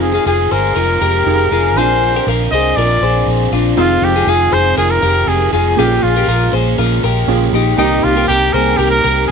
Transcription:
Already playing: F1 C4 D#4 F4 G#4
0.02 D#3 G#3 C4 F4 G#4
0.14 F4 G#4
0.26 F1 D#3 G#3 C4 F4 G#4
0.51 G1 D#3 G#3 C4 F4 G#4 A#4 C5
0.76 F1 F2 C3 D#3 G#3 C4 F4 A#4
1.01 F1 D#3 G#3 C4 F4 G4 A#4
1.26 F1 D#3 G#3 C4 D#4 F4 G#4
1.31 F4
1.51 F1 D#3 G#3 C4 F4 G#4
1.76 A#1 A#2 F3 C4 D4 F4 G#4 A#4 C5
2.03 C4 D4 F4
2.16 G4 A#4
2.27 A#1 F3 C4 D4 F4 A#4
2.51 C2 C4 D4 F4 G#4 C5 D#5
2.76 A#1 A#2 F3 C4 F4 A#4 D5
2.80 D4 F4
3.01 A#1 D4 F4 G#4 C5
3.06 C4
3.26 A#1 F3 C4 D4
3.31 F4
3.51 A#1 C4 D4 F4
3.77 F1 F2 C3 D#3 G#3 C4 D#4 F4 G#4
4.02 F1 D#3 G#3 C4 F4 G4
4.16 F4 G#4
4.27 F1 F2 C3 D#3 G#3 C4 F4 G#4
4.52 F1 D#3 G#3 C4 F4 G#4 C5
4.77 F1 D#3 G#3 C4 F4 G#4 A#4
4.91 A#4
5.02 F1 D#3 G#3 C4 F4 G4 A#4
5.27 F1 F2 C3 D#3 G#3 C4 F4 G#4
5.53 F1 D#3 G#3 C4 F4 G#4
5.77 A#1 A#2 F3 G#3 A#3 C#4 F4 G4 G#4
6.03 A#1 G#3 C#4 F4
6.16 G4 A#4
6.27 A#1 A#2 F3 G#3 C#4 F4 A#4
6.53 A#1 G#3 C#4 F4 G#4 C5
6.78 A#1 F3 G#3 C#4 F4 A#4
7.03 A#1 C#4 F4 G4 A#4
7.08 G#3
7.27 A#1 A#2 F3 G#3 A#3 C#4 F4 G#4
7.52 A#1 G#3 C#4 D#4 F4 G4
7.77 C2 C3 D#3 A#3 C4 D#4 G4
8.03 C2 A#3 C4 F4 G4
8.17 G4 A#4
8.28 C2 C3 D#3 A#3 C4 G4 A#4
8.53 C2 A#3 C4 G4 G#4 A#4 C5
8.77 C2 D#3 A#3 C4 G4 A#4
8.82 G4
8.90 A#4
9.04 C2 A#3 C4 G4 A#4
9.28 G#4

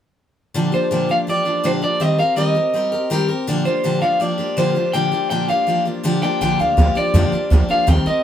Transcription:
0.54 A#2 D3 F3 A#3 D4 G4
0.72 F3 A#3 D4 G4 C5
0.91 A#2 D3 F3 A#3 D4 G4
1.09 F3 A#3 D4 G4 F5
1.27 F3 A#3 D4 G4 D5
1.45 F3 A#3 D4 G4
1.64 A#2 D3 F3 A#3 D4 G4 C5
1.82 F3 A#3 D4 G4 D5
2.00 D#3 G3 C4 G4 A#4 D#5
2.18 C4 G4 A#4 F5
2.36 D#3 G3 C4 G4 A#4 D#5
2.55 C4 G4 A#4
2.74 G3 C4 G4 A#4
2.92 C4 G4 A#4
3.10 D#3 G3 C4 G4 A#4
3.29 C4 G4 A#4
3.47 A#2 D3 F3 A#3 D4 G4
3.65 F3 A#3 D4 G4 C5
3.84 A#2 D3 F3 A#3 D4 G4
4.01 F3 A#3 D4 G4 F5
4.20 F3 A#3 D4 G4 D5
4.38 F3 A#3 D4 G4
4.57 A#2 D3 F3 A#3 D4 G4 C5
4.75 F3 A#3 D4 G4
4.93 A#2 D3 F3 A#3 D4 G4 G5
5.12 F3 A#3 D4 G4
5.30 A#2 D3 F3 A#3 D4 G4 G5
5.48 F3 A#3 D4 G4 F5
5.67 F3 A#3 D4 G4
5.85 F3 A#3 D4 G4
6.04 A#2 D3 F3 A#3 D4 G4
6.22 F3 A#3 D4 G4 G5
6.41 A#1 A#2 D3 F3 A#3 D4 G4 G5
6.59 D2 F3 A#3 D4 G4 F5
6.77 D2 F3 A#3 D4 G4
6.95 F3 A#3 D4 G4 D5, muted upright bass stroke
7.14 F2 A#2 D3 F3 A#3 D4 G4
7.32 F3 A#3 D4 G4, muted upright bass stroke
7.50 D2 F3 A#3 D4 G4
7.69 F3 A#3 D4 G4 F5, muted upright bass stroke
7.87 D#2 D#3 G3 C4 G4 A#4 G5
8.06 C4 G4 A#4 D#5, muted upright bass stroke

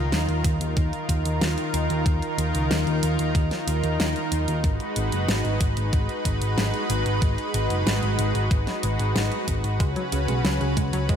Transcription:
Already playing: D#3 D#4 F4 A#4
0.12 D#2, snare, closed hi-hat
0.29 D#2, closed hi-hat
0.44 D#2, kick, closed hi-hat
0.61 D#2, closed hi-hat
0.77 D#2, kick, closed hi-hat
0.93 closed hi-hat
1.09 D#2, kick, closed hi-hat
1.25 D#2, closed hi-hat
1.41 D#2, snare, closed hi-hat
1.58 closed hi-hat
1.74 D#2, closed hi-hat
1.90 D#2, closed hi-hat
2.06 D#2, kick, closed hi-hat
2.22 closed hi-hat
2.38 D#2, closed hi-hat
2.54 C#2, closed hi-hat
2.71 D#2, snare, closed hi-hat
2.87 D#2, closed hi-hat
3.03 D#2, closed hi-hat
3.19 D#2, closed hi-hat
3.35 D#2, kick, closed hi-hat
3.51 snare, closed hi-hat
3.67 D#2, closed hi-hat
3.84 D#2, closed hi-hat
4.00 D#2, snare, closed hi-hat
4.16 closed hi-hat
4.32 D#2, closed hi-hat
4.48 D#2, closed hi-hat
4.64 G#1 G#3 F#4 B4, kick, closed hi-hat
4.80 closed hi-hat
4.96 G#1, closed hi-hat
5.12 F#1, closed hi-hat
5.29 G#1, snare, closed hi-hat
5.45 G#1, closed hi-hat
5.61 G#1, kick, closed hi-hat
5.77 G#1, closed hi-hat
5.93 G#1, kick, closed hi-hat
6.09 closed hi-hat
6.25 G#1, kick, closed hi-hat
6.42 G#1, closed hi-hat
6.58 G#1, snare, closed hi-hat
6.74 closed hi-hat
6.90 G#1, closed hi-hat
7.06 G#1, closed hi-hat
7.22 G#1, kick, closed hi-hat
7.38 closed hi-hat
7.54 G#1, closed hi-hat
7.70 F#1, closed hi-hat
7.86 G#1, snare, closed hi-hat
8.03 G#1, closed hi-hat
8.19 G#1, closed hi-hat
8.35 G#1, closed hi-hat
8.51 G#1, kick, closed hi-hat
8.67 snare, closed hi-hat
8.83 G#1, closed hi-hat
8.99 G#1, closed hi-hat
9.16 G#1, snare, closed hi-hat
9.32 closed hi-hat
9.48 G#1, kick, closed hi-hat
9.64 G#1, closed hi-hat
9.80 C#2 C#3 G#3 C#4 B4, kick, closed hi-hat
9.96 F#3, closed hi-hat
10.12 C#2 C#3, closed hi-hat
10.28 B1 G#3, closed hi-hat
10.45 C#2 F#3, snare, closed hi-hat
10.61 C#2 C#3, closed hi-hat
10.77 C#2 G#3, kick, closed hi-hat
10.93 C#2 F#3, closed hi-hat
11.09 C#2 G#3, kick, closed hi-hat

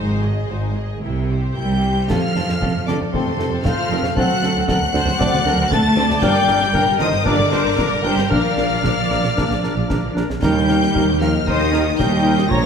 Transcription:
Already playing: G#1 G#2 D#4 C5 G#5
0.22 G#4 D#5
0.49 G#1 G#2 D#4 C5 G#5
0.74 G#4 D#5
1.02 C2 C3 E4 A#4 G5
1.29 G4 C5 E5
1.55 C2 C3 G3 E4 A#4 G5 G6
1.82 G4 C5 E5
2.08 F1 F2 F3 A3 C4 A4 F5 F6, concert bass drum, snare, crash
2.36 F1 F2 A3 C4 A4, snare
2.48 F2 C4, snare
2.61 F1 F2 A3 C4 A4, concert bass drum
2.75 F2 A3
2.87 F1 F2 D3 C4 A4 D5 D6, snare
3.01 F2 A3
3.11 F1 F2 C3 A3 C4 A4 C5 C6, concert bass drum
3.26 F2 A3
3.38 F1 F2 A3 C4 A4, snare
3.51 F2 C4
3.62 F1 F2 F3 A3 C4 A4 F5 F6, concert bass drum, snare
3.67 C5
3.78 F2 A3
3.90 F1 F2 C4 A4 A#4
4.04 F2 A3, snare
4.15 D2 F#3 A3 C4 A4 F#5 F#6, concert bass drum
4.42 D2 A3 C4 A4, snare
4.56 D2 C4
4.67 D2 F#3 A3 C4 A4 A#4 F#5 F#6, concert bass drum, snare
4.81 D2 A3
4.93 D2 C4 A4 C5, snare
5.06 D2 A3, snare
5.18 D2 A3 C4 A4 D5, concert bass drum, snare
5.32 D2 A3, snare
5.44 D2 A3 C4 A4 A#4, snare
5.57 D2 C4
5.70 D2 A3 C4 A4 A5 A6, concert bass drum, snare
5.84 D2 A3
5.96 D2 C4 A4 D5, snare
6.10 D2 A3, snare
6.20 G1 G3 A#3 D4 A#4 G5 G6, concert bass drum, snare, crash
6.48 G1 G3 D4 A#4, snare
6.60 G1 D4, snare
6.74 G1 A#3 D4 A#4, concert bass drum
6.87 G1 G3
6.98 G1 D#3 D4 A#4 C5 D#5 D#6, snare
7.12 G1 A#3
7.23 G1 D3 A#3 D4 A#4 D5 D6, concert bass drum
7.38 G1 A#3
7.50 G1 G3 D4 A#4 C5, snare
7.64 G1 D4
7.76 G1 A#3 D4 A#4, concert bass drum, snare
7.91 G1 G3
8.02 G1 G3 D4 A#4 C5 G5 G6
8.17 G1 A#3, snare
8.30 A#1 F3 A#3 D4 A#4 D5 F5 F6, concert bass drum
8.55 A#1 A#3 D4 A#4, snare
8.71 A#1 D4
8.82 A#1 A#3 D4 A#4, concert bass drum, snare
8.97 A#1 A#3
9.09 A#1 D4 A#4, snare
9.23 A#1 A#3, snare
9.36 A#1 A#3 D4 A#4, concert bass drum, snare
9.50 A#1 A#3, snare
9.62 A#1 A#3 D4 A#4, snare
9.75 A#1 D4
9.88 A#1 A#3 D4 A#4, concert bass drum, snare
10.04 A#1 A#3
10.14 A#1 D4 A#4, snare
10.30 A#1 A#3, snare
10.41 D#2 G3 A#3 D#4 G4 A#4 G5 G6, concert bass drum, snare, crash
10.56 D#4 G4
10.67 D#4 G4 A#4, snare
10.81 D#4 G4, snare
10.94 D#2 D#4 G4 A#4, concert bass drum
11.08 D#4 G4
11.19 F3 D#4 G4 A#4 F5 F6, snare
11.34 D#4 G4
11.46 D#2 D#3 D#4 G4 A#4 C5 D#5 D#6, concert bass drum
11.59 D#4 G4
11.72 D#4 G4 A#4, snare
11.87 D#4 G4
11.97 D#2 G3 D#4 A#4 D#5 G5 G6, concert bass drum, snare
12.01 G4
12.13 D#4 G4
12.22 D#4 G4 A#4
12.38 D#4 G4, snare
12.48 A#1 A#3 C#4 F4 C#5 A#5 A#6, concert bass drum

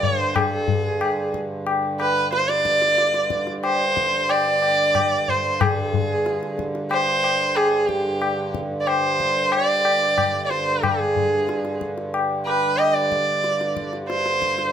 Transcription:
Already playing: G2 D3
0.03 C5, tabla ge
0.36 G#4, tabla na, tabla ge
0.68 tabla ge
1.01 tabla na
1.34 tabla ke
1.67 tabla na
2.00 B4, tabla na
2.33 C5, tabla te
2.49 D5, tabla te
2.65 tabla ke
2.82 tabla te
2.98 tabla te
3.14 tabla te
3.30 tabla ke
3.47 tabla te
3.64 C5, tabla na
3.97 tabla ke
4.29 D5, tabla na
4.62 tabla na
4.95 tabla na, tabla ge
5.28 C5, tabla ge
5.61 G2 D3 G#4, tabla na, tabla ge
5.94 tabla ge
6.26 tabla te
6.43 tabla te
6.59 tabla ke
6.75 tabla te
6.91 C5, tabla na
7.24 tabla na
7.56 G#4, tabla na
7.88 G4, tabla ke
8.22 tabla na
8.54 tabla ke
8.80 D5
8.87 C5, tabla na
9.20 tabla ke
9.52 D5, tabla na
9.85 tabla na
10.18 tabla na, tabla ge
10.44 D5
10.50 C5, tabla te
10.83 G#4, tabla na, tabla ge
11.16 tabla ge
11.49 tabla te
11.65 tabla te
11.81 tabla ke
11.98 tabla te
12.14 tabla na
12.46 B4, tabla na
12.78 D#5, tabla na
12.94 D5
13.12 tabla ke
13.44 tabla te
13.61 tabla te
13.77 tabla ke
13.93 tabla te
14.08 C5, tabla te
14.26 tabla te
14.42 tabla ke
14.58 tabla te

